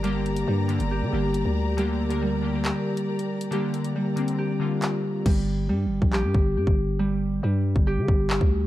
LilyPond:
<<
  \new Staff \with { instrumentName = "String section" } { \time 4/4 \key g \minor \tempo 4 = 138 <g' bes' d'' bes''>1~ | <g' bes' d'' bes''>1~ | <g' bes' d'' bes''>1 | r1 |
r1 | }
  \new Staff \with { instrumentName = "Synth keys" } { \time 4/4 \key g \minor <d bes g'>4 r8 <d bes g'>8. r16 <d bes g'>4 r8 | <d bes g'>8 r16 <d bes bes'>8 r16 <d bes g'>16 <d bes g'>4. r8. | <d bes g'>4 r8 <d bes c'>8. r16 <d bes f'>4 r8 | r1 |
r1 | }
  \new Staff \with { instrumentName = "Harp" } { \clef bass \time 4/4 \key g \minor <g g'>4 g4 g'2 | g4 g4 g'2 | g4 g4 g'2 | g4 g4 g'2 |
g4 g4 g'2 | }
  \new Staff \with { instrumentName = "808-style bass" } { \clef bass \time 4/4 \key g \minor g,,4 g,8. g,,8 d16 g,,8. d,8.~ | d,2~ d,16 r4. r16 | r1 | g,,4 g,16. g,,16. bes,,8 g,16 g,,8 g,16 g,,8.~ |
g,,4 g,8. g,,8 d16 g,,8. d,8. | }
  \new DrumStaff \with { instrumentName = "Drums" } \drummode { \time 4/4 hh8 hh16 hh16 r8 hh16 hh16 r4 hh4 | hh8. hh16 r4 <hc hh>8. hh16 r16 hh8 hh16 | hh8 hh16 hh16 r8 hh16 hh16 r4 <hc hh>4 | <cymc bd>4 r8. bd16 hc8 bd8 r16 bd8. |
r4 r8. bd16 r8 bd8 hc16 bd8. | }
>>